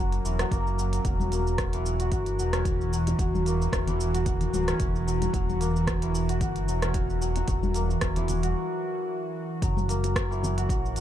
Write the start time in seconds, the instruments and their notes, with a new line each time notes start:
Already playing: analog synth bass F#1, santur F#3 A#3 C#4, synth drone F#3 C#4 F#4 A#4
0.00 santur F#4
0.12 closed hi-hat, shaker
0.24 analog synth bass E1, santur E3, shaker
0.39 santur F#3, cross-stick, closed hi-hat, shaker
0.51 analog synth bass F#1, santur A#3, kick, closed hi-hat, shaker
0.67 shaker
0.78 santur F#3, shaker
0.93 closed hi-hat, shaker
1.05 analog synth bass E1, synth drone E3, santur F#3, kick, closed hi-hat, shaker
1.20 high conga, shaker
1.32 santur A#3, closed hi-hat, shaker
1.47 shaker
1.58 kick, cross-stick, closed hi-hat, high bongo, shaker
1.73 santur E3, closed hi-hat, shaker
1.86 shaker
2.00 santur F#4, closed hi-hat, shaker
2.12 analog synth bass G1, santur F#4, kick, closed hi-hat, shaker
2.26 closed hi-hat, shaker
2.39 analog synth bass E1, santur F#3, shaker
2.53 santur C#4, cross-stick, closed hi-hat, high conga, shaker
2.65 kick, closed hi-hat, shaker
2.81 shaker
2.93 santur F#3, shaker
3.07 closed hi-hat, high bongo, shaker
3.19 analog synth bass E1, santur F#3, kick, closed hi-hat, shaker
3.35 high conga, shaker
3.46 santur A#3, closed hi-hat, shaker
3.62 high bongo, shaker
3.73 analog synth bass E1, santur C#4, kick, cross-stick, closed hi-hat, high bongo, shaker
3.87 santur E3, closed hi-hat, low conga, shaker
4.00 shaker
4.14 santur F#4, closed hi-hat, high conga, shaker
4.26 santur F#4, kick, closed hi-hat, shaker
4.41 closed hi-hat, low conga, shaker
4.53 analog synth bass D1, santur F#3, high conga, shaker
4.68 santur C#4, cross-stick, closed hi-hat, shaker
4.80 analog synth bass E1, kick, closed hi-hat, shaker
4.95 high conga, shaker
5.07 santur F#3, shaker
5.22 closed hi-hat, high conga, shaker
5.34 analog synth bass E1, santur F#3, kick, closed hi-hat, shaker
5.49 high conga, shaker
5.60 santur A#3, closed hi-hat, shaker
5.76 shaker
5.87 santur C#4, kick, cross-stick, closed hi-hat, high bongo, shaker
6.02 santur E3, closed hi-hat, shaker
6.15 shaker
6.29 santur F#4, closed hi-hat, shaker
6.41 analog synth bass G1, santur F#4, kick, closed hi-hat, shaker
6.56 closed hi-hat, shaker
6.67 analog synth bass E1, santur F#3, shaker
6.82 santur C#4, cross-stick, closed hi-hat, high conga, shaker
6.94 kick, closed hi-hat, shaker
7.10 shaker
7.21 santur F#3, shaker
7.36 closed hi-hat, high bongo, shaker
7.48 analog synth bass E1, santur F#3, kick, closed hi-hat, shaker
7.63 high bongo, high conga, shaker
7.74 santur A#3, closed hi-hat, shaker
7.89 high bongo, shaker
8.01 analog synth bass E1, santur C#4, kick, cross-stick, closed hi-hat, high bongo, shaker
8.16 santur E3, closed hi-hat, low conga, shaker
8.28 closed hi-hat, high bongo, low conga, shaker
8.43 santur F#4, closed hi-hat, high conga, shaker
9.61 analog synth bass F#1, synth drone F#3 C#4 A#4 F#5, santur F#3, kick, closed hi-hat, shaker
9.77 high bongo, high conga, shaker
9.89 santur A#3, closed hi-hat, shaker
10.04 closed hi-hat, high bongo, shaker
10.15 santur C#4, kick, cross-stick, closed hi-hat, high bongo, shaker
10.31 santur E3, shaker
10.43 high bongo, low conga, shaker
10.58 santur F#4, closed hi-hat, shaker
10.69 analog synth bass A#1, santur F#4, kick, closed hi-hat, shaker
10.86 shaker
10.96 analog synth bass F#1, santur F#3, closed hi-hat, shaker